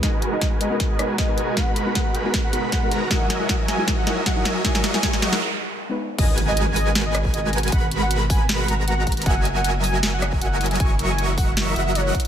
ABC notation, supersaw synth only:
X:1
M:4/4
L:1/8
Q:"Swing 16ths" 1/4=156
K:G#m
V:1 name="Supersaw synth"
[G,FABg]6 [G,FABg]2 | [G,FAB]6- [G,FAB] [G,FABa] | [F,FAdeg]6 [F,Fe]2 | [F,FAdec']4 z4 |
[G,FABg]6 [G,FABg]2 | [G,A]4- [G,A] [G,FABa]3 | [F,FAdeg]6 [F,FAdeg]2 | [F,FAc']4- [F,FAc'] [F,FAdef]2 z |]